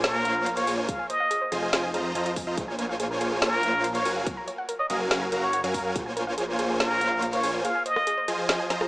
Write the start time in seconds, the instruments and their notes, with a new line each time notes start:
Already playing: detuned saw bass A#1, supersaw synth A#3 F4 C5 C#5 G#5
0.04 muted trumpet A#4, synth arpeggio sound C#5, snare, closed hi-hat
0.14 detuned saw bass A#1, supersaw synth A#3 F4 C5 C#5 A#5, synth arpeggio sound G#5
0.25 detuned saw bass A#1, supersaw synth A#3 F4 C5 C#5 F5, synth arpeggio sound F5, closed hi-hat
0.36 synth arpeggio sound F5
0.46 synth arpeggio sound F5, closed hi-hat
0.57 synth arpeggio sound A#4, muted trumpet C#5, closed hi-hat
0.67 detuned saw bass A#1, supersaw synth A#3 F4 C5 C#5 G#5, synth arpeggio sound G#4, open hi-hat
0.78 synth arpeggio sound C#5
0.88 synth arpeggio sound G#4, muted trumpet F5, kick, closed hi-hat
0.99 synth arpeggio sound G#5
1.10 synth arpeggio sound C5, muted trumpet D#5, closed hi-hat
1.20 synth arpeggio sound F5
1.31 synth arpeggio sound G#4, closed hi-hat
1.41 synth arpeggio sound C5
1.52 detuned saw bass F1, supersaw synth F3 F4 C5 D#5 G#5, synth arpeggio sound G#4, closed hi-hat
1.62 synth arpeggio sound G#4
1.73 detuned saw bass F1, supersaw synth F3 F4 C5 D#5 G#5, synth arpeggio sound D#5, snare, closed hi-hat
1.83 synth arpeggio sound G#5
1.94 detuned saw bass F1, supersaw synth F3 F4 C5 D#5 A#5, synth arpeggio sound G#4, closed hi-hat
2.05 synth arpeggio sound D#5
2.15 detuned saw bass F2, supersaw synth F3 F4 C5 D#5 A#5, synth arpeggio sound G#5, closed hi-hat
2.26 synth arpeggio sound D#5, closed hi-hat
2.36 synth arpeggio sound G#5, kick, open hi-hat
2.47 detuned saw bass F2, supersaw synth F3 F4 C5 D#5 A#5, synth arpeggio sound D#5
2.57 detuned saw bass A#1, supersaw synth A#3 F4 C5 C#5 G#5, synth arpeggio sound G#4, kick, closed hi-hat
2.68 synth arpeggio sound G#5
2.79 synth arpeggio sound A#4, closed hi-hat
2.89 synth arpeggio sound F5
3.00 synth arpeggio sound G#4, closed hi-hat
3.11 synth arpeggio sound A#4
3.21 detuned saw bass A#1, supersaw synth A#3 F4 C5 C#5 G#5, synth arpeggio sound G#4, closed hi-hat
3.32 synth arpeggio sound G#4
3.42 muted trumpet A#4, synth arpeggio sound C#5, snare, closed hi-hat
3.53 detuned saw bass A#1, supersaw synth A#3 F4 C5 C#5 A#5, synth arpeggio sound G#5
3.63 detuned saw bass A#1, supersaw synth A#3 F4 C5 C#5 F5, synth arpeggio sound F5, closed hi-hat
3.74 synth arpeggio sound F5
3.84 synth arpeggio sound F5, closed hi-hat
3.95 synth arpeggio sound A#4, muted trumpet C#5, closed hi-hat
4.05 detuned saw bass F#1, supersaw synth F#3 F#4 A#4 F5 G#5, synth arpeggio sound A#4, open hi-hat
4.16 synth arpeggio sound F5
4.27 synth arpeggio sound A#4, kick, closed hi-hat
4.37 synth arpeggio sound A#5
4.47 synth arpeggio sound C#5, closed hi-hat
4.58 synth arpeggio sound F#5
4.69 synth arpeggio sound A#4, closed hi-hat
4.79 synth arpeggio sound C#5, muted trumpet D#5
4.90 detuned saw bass F#1, supersaw synth F#3 F#4 A#4 F5 G#5, synth arpeggio sound A#4, muted trumpet D#5, closed hi-hat
5.00 synth arpeggio sound A#4
5.11 detuned saw bass F#1, supersaw synth F#3 F#4 A#4 F5 G#5, synth arpeggio sound F5, snare, closed hi-hat
5.22 synth arpeggio sound A#5
5.32 detuned saw bass F#1, supersaw synth F#3 F#4 A#4 F5 A#5, synth arpeggio sound F#5, closed hi-hat
5.43 muted trumpet C#5, synth arpeggio sound F#5
5.53 synth arpeggio sound F#5, closed hi-hat
5.64 detuned saw bass F#2, supersaw synth F#3 F#4 A#4 F5 G#5, synth arpeggio sound C#5, closed hi-hat
5.74 muted trumpet A#4, synth arpeggio sound A#4, kick, open hi-hat
5.85 muted trumpet A#4, synth arpeggio sound F5
5.95 detuned saw bass A#1, supersaw synth A#3 F4 C5 C#5 G#5, synth arpeggio sound G#4, kick, closed hi-hat
6.06 synth arpeggio sound G#5
6.17 synth arpeggio sound A#4, closed hi-hat
6.27 synth arpeggio sound F5
6.38 synth arpeggio sound G#4, closed hi-hat
6.48 synth arpeggio sound A#4
6.59 detuned saw bass A#1, supersaw synth A#3 F4 C5 C#5 G#5, synth arpeggio sound G#4, closed hi-hat
6.70 synth arpeggio sound G#4
6.80 muted trumpet A#4, synth arpeggio sound C#5, snare, closed hi-hat
6.91 detuned saw bass A#1, supersaw synth A#3 F4 C5 C#5 A#5, synth arpeggio sound G#5
7.01 detuned saw bass A#1, supersaw synth A#3 F4 C5 C#5 F5, synth arpeggio sound F5, closed hi-hat
7.12 synth arpeggio sound F5
7.22 synth arpeggio sound F5, closed hi-hat
7.33 synth arpeggio sound A#4, muted trumpet C#5, closed hi-hat
7.43 detuned saw bass A#1, supersaw synth A#3 F4 C5 C#5 G#5, synth arpeggio sound G#4, open hi-hat
7.54 synth arpeggio sound C#5
7.65 synth arpeggio sound G#4, muted trumpet F5, closed hi-hat
7.75 synth arpeggio sound G#5
7.86 synth arpeggio sound C5, muted trumpet D#5, closed hi-hat
7.96 synth arpeggio sound F5, cross-stick
8.07 synth arpeggio sound G#4, closed hi-hat
8.18 synth arpeggio sound C5
8.28 supersaw synth F3 F4 C5 D#5 G#5, synth arpeggio sound G#4, closed hi-hat
8.39 synth arpeggio sound G#4
8.49 supersaw synth F3 F4 C5 D#5 G#5, synth arpeggio sound D#5, snare, closed hi-hat
8.60 synth arpeggio sound G#5
8.70 supersaw synth F3 F4 C5 D#5 A#5, synth arpeggio sound G#5, snare, closed hi-hat
8.81 synth arpeggio sound G#4, cross-stick